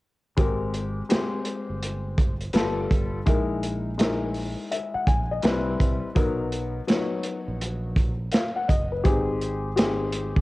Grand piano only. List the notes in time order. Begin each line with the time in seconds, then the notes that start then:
0.37 G#3 C4 G4 A#4
1.09 G#3 C4 G4 C5
2.54 G3 B3 F4 A4
3.26 G#3 D#4 E4 A#4
3.98 G#3 D#4 E4 A#4
4.71 E5
4.94 F#5
5.07 G#5
5.31 D#5
5.43 G3 C4 E4 B4
6.15 F#3 B3 D#4 A#4
6.87 F#3 B3 D#4 C#5
8.33 F5
8.56 F#5
8.68 D#5
8.92 B4
9.04 C4 D#4 G4 G#4
9.76 C4 D#4 G4 G#4